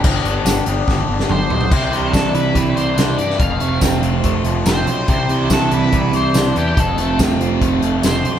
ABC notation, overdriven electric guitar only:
X:1
M:4/4
L:1/8
Q:1/4=142
K:C
V:1 name="Overdriven electric guitar"
[G,,D,G,B,DG]3 [G,,D,G,B,DG]4- [G,,D,G,B,DG] | C, G, D E G, E, D E | F,, A, C F A, F, C F | C, G, D E G, E, D E |
F,, A, C F A, F, C F |]